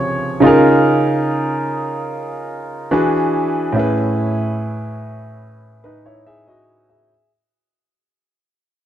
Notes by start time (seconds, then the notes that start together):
Already playing: C3 C#3 F3 C#5
0.40 C#3 D#4 F4
0.45 G#4 A#4
2.91 E3 D4 F#4 G#4 B4
3.73 A2 C#4 E4
3.78 G#4 B4
5.84 D#4 B4
6.06 E4 C#5
6.27 G#4 E5
6.48 F#4 D#5
6.90 G#4 E5